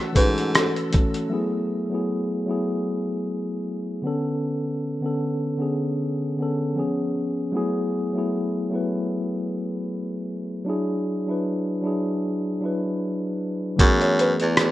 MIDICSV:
0, 0, Header, 1, 6, 480
1, 0, Start_track
1, 0, Key_signature, 3, "minor"
1, 0, Tempo, 779221
1, 815, Time_signature, 4, 2, 24, 8
1, 9064, End_track
2, 0, Start_track
2, 0, Title_t, "String section"
2, 0, Program_c, 0, 48
2, 0, Note_on_c, 0, 69, 82
2, 0, Note_on_c, 0, 78, 77
2, 0, Note_on_c, 0, 88, 87
2, 794, Note_off_c, 0, 88, 0
2, 796, Note_off_c, 0, 69, 0
2, 796, Note_off_c, 0, 78, 0
2, 9064, End_track
3, 0, Start_track
3, 0, Title_t, "Felt piano"
3, 0, Program_c, 1, 0
3, 0, Note_on_c, 1, 69, 81
3, 96, Note_off_c, 1, 69, 0
3, 100, Note_on_c, 1, 71, 75
3, 338, Note_off_c, 1, 71, 0
3, 343, Note_on_c, 1, 69, 74
3, 555, Note_off_c, 1, 69, 0
3, 8634, Note_on_c, 1, 73, 77
3, 8728, Note_off_c, 1, 73, 0
3, 8749, Note_on_c, 1, 71, 79
3, 9064, Note_off_c, 1, 71, 0
3, 9064, End_track
4, 0, Start_track
4, 0, Title_t, "Tine electric piano"
4, 0, Program_c, 2, 4
4, 0, Control_c, 2, 64, 127
4, 0, Note_on_c, 2, 52, 74
4, 0, Note_on_c, 2, 57, 68
4, 0, Note_on_c, 2, 61, 73
4, 0, Note_on_c, 2, 66, 77
4, 79, Note_off_c, 2, 52, 0
4, 79, Note_on_c, 2, 52, 69
4, 90, Note_on_c, 2, 69, 61
4, 99, Note_off_c, 2, 61, 0
4, 99, Note_on_c, 2, 61, 64
4, 110, Note_off_c, 2, 66, 0
4, 110, Note_on_c, 2, 66, 77
4, 472, Note_off_c, 2, 52, 0
4, 478, Note_off_c, 2, 69, 0
4, 482, Note_off_c, 2, 61, 0
4, 488, Note_off_c, 2, 66, 0
4, 554, Note_on_c, 2, 52, 60
4, 565, Note_off_c, 2, 57, 0
4, 565, Note_on_c, 2, 57, 62
4, 574, Note_on_c, 2, 61, 58
4, 585, Note_on_c, 2, 69, 70
4, 757, Note_off_c, 2, 52, 0
4, 762, Note_off_c, 2, 57, 0
4, 767, Note_off_c, 2, 61, 0
4, 773, Note_off_c, 2, 69, 0
4, 791, Note_on_c, 2, 54, 74
4, 799, Note_on_c, 2, 57, 73
4, 807, Note_on_c, 2, 59, 73
4, 816, Note_on_c, 2, 64, 73
4, 823, Control_c, 2, 64, 0
4, 823, Note_on_c, 2, 68, 91
4, 924, Control_c, 2, 64, 127
4, 1088, Note_off_c, 2, 54, 0
4, 1092, Note_off_c, 2, 57, 0
4, 1096, Note_off_c, 2, 59, 0
4, 1100, Note_off_c, 2, 64, 0
4, 1104, Note_off_c, 2, 68, 0
4, 1168, Note_on_c, 2, 54, 63
4, 1177, Note_on_c, 2, 57, 56
4, 1183, Note_on_c, 2, 59, 57
4, 1194, Note_on_c, 2, 64, 57
4, 1199, Note_on_c, 2, 68, 66
4, 1454, Note_off_c, 2, 54, 0
4, 1458, Note_off_c, 2, 57, 0
4, 1462, Note_off_c, 2, 59, 0
4, 1467, Note_off_c, 2, 64, 0
4, 1470, Note_off_c, 2, 68, 0
4, 1515, Note_on_c, 2, 54, 69
4, 1520, Note_on_c, 2, 57, 57
4, 1529, Note_on_c, 2, 59, 59
4, 1534, Note_on_c, 2, 64, 63
4, 1544, Note_on_c, 2, 68, 72
4, 2276, Note_off_c, 2, 54, 0
4, 2279, Note_off_c, 2, 57, 0
4, 2283, Note_off_c, 2, 59, 0
4, 2286, Note_off_c, 2, 64, 0
4, 2291, Note_off_c, 2, 68, 0
4, 2476, Note_on_c, 2, 50, 74
4, 2485, Note_on_c, 2, 59, 73
4, 2498, Note_on_c, 2, 61, 76
4, 2502, Control_c, 2, 64, 0
4, 2506, Note_on_c, 2, 69, 88
4, 2595, Control_c, 2, 64, 127
4, 2965, Note_off_c, 2, 50, 0
4, 2970, Note_off_c, 2, 59, 0
4, 2977, Note_off_c, 2, 61, 0
4, 2981, Note_off_c, 2, 69, 0
4, 3087, Note_on_c, 2, 50, 64
4, 3094, Note_on_c, 2, 59, 61
4, 3106, Note_on_c, 2, 61, 58
4, 3116, Note_on_c, 2, 69, 72
4, 3373, Note_off_c, 2, 50, 0
4, 3377, Note_off_c, 2, 59, 0
4, 3383, Note_off_c, 2, 61, 0
4, 3388, Note_off_c, 2, 69, 0
4, 3430, Note_on_c, 2, 50, 68
4, 3441, Note_on_c, 2, 59, 60
4, 3450, Note_on_c, 2, 61, 58
4, 3461, Note_on_c, 2, 68, 77
4, 3828, Note_off_c, 2, 50, 0
4, 3833, Note_off_c, 2, 59, 0
4, 3838, Note_off_c, 2, 61, 0
4, 3843, Note_off_c, 2, 68, 0
4, 3925, Note_on_c, 2, 50, 57
4, 3937, Note_on_c, 2, 59, 59
4, 3947, Note_on_c, 2, 61, 55
4, 3958, Note_on_c, 2, 69, 74
4, 4155, Note_on_c, 2, 53, 65
4, 4159, Note_off_c, 2, 59, 0
4, 4166, Note_on_c, 2, 59, 62
4, 4168, Note_off_c, 2, 61, 0
4, 4170, Note_off_c, 2, 50, 0
4, 4176, Note_on_c, 2, 61, 68
4, 4183, Control_c, 2, 64, 0
4, 4185, Note_on_c, 2, 68, 76
4, 4186, Note_off_c, 2, 69, 0
4, 4277, Control_c, 2, 64, 127
4, 4559, Note_off_c, 2, 53, 0
4, 4564, Note_off_c, 2, 59, 0
4, 4569, Note_off_c, 2, 61, 0
4, 4574, Note_off_c, 2, 68, 0
4, 4632, Note_on_c, 2, 54, 85
4, 4639, Note_on_c, 2, 57, 74
4, 4645, Note_on_c, 2, 59, 78
4, 4653, Note_on_c, 2, 64, 81
4, 4661, Note_on_c, 2, 68, 97
4, 4663, Control_c, 2, 64, 0
4, 4769, Control_c, 2, 64, 127
4, 4928, Note_off_c, 2, 54, 0
4, 4932, Note_off_c, 2, 57, 0
4, 4935, Note_off_c, 2, 59, 0
4, 4939, Note_off_c, 2, 64, 0
4, 4943, Note_off_c, 2, 68, 0
4, 5011, Note_on_c, 2, 54, 63
4, 5019, Note_on_c, 2, 57, 63
4, 5024, Note_on_c, 2, 59, 58
4, 5036, Note_on_c, 2, 64, 60
4, 5041, Note_on_c, 2, 68, 74
4, 5295, Note_off_c, 2, 54, 0
4, 5299, Note_off_c, 2, 57, 0
4, 5302, Note_off_c, 2, 59, 0
4, 5308, Note_off_c, 2, 64, 0
4, 5311, Note_off_c, 2, 68, 0
4, 5360, Note_on_c, 2, 54, 69
4, 5366, Note_on_c, 2, 57, 65
4, 5375, Note_on_c, 2, 59, 61
4, 5383, Note_on_c, 2, 64, 62
4, 5392, Note_on_c, 2, 71, 69
4, 6119, Note_off_c, 2, 54, 0
4, 6122, Note_off_c, 2, 57, 0
4, 6126, Note_off_c, 2, 59, 0
4, 6130, Note_off_c, 2, 64, 0
4, 6135, Note_off_c, 2, 71, 0
4, 6559, Note_on_c, 2, 54, 75
4, 6568, Note_on_c, 2, 62, 81
4, 6579, Note_on_c, 2, 64, 73
4, 6583, Control_c, 2, 64, 0
4, 6588, Note_on_c, 2, 68, 91
4, 6687, Control_c, 2, 64, 127
4, 6852, Note_off_c, 2, 54, 0
4, 6856, Note_off_c, 2, 62, 0
4, 6862, Note_off_c, 2, 64, 0
4, 6866, Note_off_c, 2, 68, 0
4, 6938, Note_on_c, 2, 54, 61
4, 6950, Note_on_c, 2, 62, 59
4, 6957, Note_on_c, 2, 64, 60
4, 6967, Note_on_c, 2, 71, 65
4, 7219, Note_off_c, 2, 54, 0
4, 7225, Note_off_c, 2, 62, 0
4, 7229, Note_off_c, 2, 64, 0
4, 7234, Note_off_c, 2, 71, 0
4, 7279, Note_on_c, 2, 54, 67
4, 7290, Note_on_c, 2, 62, 67
4, 7300, Note_on_c, 2, 64, 62
4, 7310, Note_on_c, 2, 68, 69
4, 7672, Note_off_c, 2, 54, 0
4, 7678, Note_off_c, 2, 62, 0
4, 7683, Note_off_c, 2, 64, 0
4, 7688, Note_off_c, 2, 68, 0
4, 7765, Note_on_c, 2, 54, 66
4, 7773, Note_on_c, 2, 62, 57
4, 7785, Note_on_c, 2, 64, 63
4, 7796, Note_on_c, 2, 71, 67
4, 8340, Note_off_c, 2, 54, 0
4, 8344, Note_off_c, 2, 62, 0
4, 8350, Note_off_c, 2, 64, 0
4, 8355, Note_off_c, 2, 71, 0
4, 8479, Note_on_c, 2, 52, 94
4, 8488, Note_on_c, 2, 57, 87
4, 8498, Note_on_c, 2, 59, 84
4, 8504, Control_c, 2, 64, 0
4, 8509, Note_on_c, 2, 68, 103
4, 8611, Control_c, 2, 64, 127
4, 9057, Note_off_c, 2, 52, 0
4, 9061, Note_off_c, 2, 57, 0
4, 9064, Note_off_c, 2, 59, 0
4, 9064, Note_off_c, 2, 68, 0
4, 9064, End_track
5, 0, Start_track
5, 0, Title_t, "Baritone saxophone"
5, 0, Program_c, 3, 67
5, 99, Note_on_c, 3, 44, 78
5, 445, Note_off_c, 3, 44, 0
5, 8497, Note_on_c, 3, 42, 103
5, 8844, Note_off_c, 3, 42, 0
5, 8877, Note_on_c, 3, 40, 86
5, 9064, Note_off_c, 3, 40, 0
5, 9064, End_track
6, 0, Start_track
6, 0, Title_t, "Drums"
6, 96, Note_on_c, 9, 36, 97
6, 98, Note_on_c, 9, 42, 69
6, 158, Note_off_c, 9, 36, 0
6, 159, Note_off_c, 9, 42, 0
6, 233, Note_on_c, 9, 42, 47
6, 295, Note_off_c, 9, 42, 0
6, 337, Note_on_c, 9, 42, 83
6, 342, Note_on_c, 9, 37, 104
6, 399, Note_off_c, 9, 42, 0
6, 403, Note_off_c, 9, 37, 0
6, 471, Note_on_c, 9, 42, 36
6, 532, Note_off_c, 9, 42, 0
6, 570, Note_on_c, 9, 42, 64
6, 581, Note_on_c, 9, 36, 94
6, 632, Note_off_c, 9, 42, 0
6, 642, Note_off_c, 9, 36, 0
6, 704, Note_on_c, 9, 42, 47
6, 766, Note_off_c, 9, 42, 0
6, 8496, Note_on_c, 9, 36, 113
6, 8497, Note_on_c, 9, 42, 86
6, 8557, Note_off_c, 9, 36, 0
6, 8559, Note_off_c, 9, 42, 0
6, 8632, Note_on_c, 9, 42, 38
6, 8694, Note_off_c, 9, 42, 0
6, 8743, Note_on_c, 9, 42, 68
6, 8804, Note_off_c, 9, 42, 0
6, 8868, Note_on_c, 9, 42, 51
6, 8930, Note_off_c, 9, 42, 0
6, 8975, Note_on_c, 9, 42, 80
6, 8977, Note_on_c, 9, 37, 109
6, 9037, Note_off_c, 9, 42, 0
6, 9038, Note_off_c, 9, 37, 0
6, 9064, End_track
0, 0, End_of_file